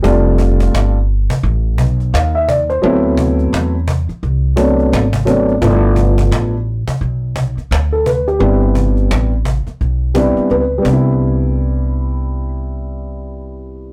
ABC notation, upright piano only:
X:1
M:4/4
L:1/16
Q:"Swing 16ths" 1/4=86
K:C
V:1 name="Upright piano"
z12 f e d c- | c z12 z3 | z12 z A B G- | G z8 z3 B2 z2 |
z16 |]
V:2 name="Upright piano"
[G,A,CDF]4- [G,A,CDF] z8 z3 | [^F,A,B,CE]4- [F,A,B,CE] z4 z [F,A,B,CD]2 z2 [F,A,B,CD]2 | [F,A,B,DE]4- [F,A,B,DE] z8 z3 | [G,B,CDE]4- [G,B,CDE] z4 z [G,B,CDE]2 z2 [G,B,CDE]2- |
[G,B,CDE]16 |]